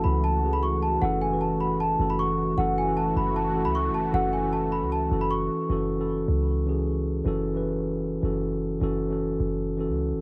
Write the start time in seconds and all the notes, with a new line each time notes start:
Already playing: E3 A3 C#4 F#4 A4
0.04 C#2 B5
0.24 A5
0.42 E3 C#4 F#4 G#4
0.53 B5
0.63 C#6
0.83 A5
1.01 F#1 E3 C#4 F#4 A4 F#5
1.22 G#5
1.30 E3 C#4 F#4 B4
1.41 A5
1.60 B5
1.80 A5
1.98 F#1 E3 C#4 F#4 A4
2.10 B5
2.19 C#6
2.56 F#1 E3 A3 C#4 F#4 A4 F#5
2.78 G#5
2.85 E3 C#4 F#4 A4
2.97 A5
3.17 F#1 B5
3.36 A5
3.53 E3 C#4 F#4 A4
3.65 C#2 B5
3.75 C#6
3.90 F#1
3.94 A5
4.12 F#1 E3 C#4 F#4 A4 F#5
4.33 G#5
4.42 E3 C#4 F#4 A4
4.53 A5
4.72 B5
4.82 C#2
4.92 A5
5.10 F#1 E3 C#4 F#4 A4
5.21 B5
5.31 C#6
5.69 F#1 E3 C#4 F#4 A4
5.97 E3 C#4 F#4 A4
6.28 C#2
6.66 E3 C#4 F#4 G#4
7.24 F#1 E3 C#4 F#4 A4
7.53 E3 C#4 F#4 B4
8.22 F#1 E3 C#4 F#4 A4
8.80 F#1 E3 C#4 F#4 A4
9.09 E3 C#4 F#4 A4
9.40 F#1
9.77 E3 C#4 F#4 A4
9.89 C#2
10.13 F#1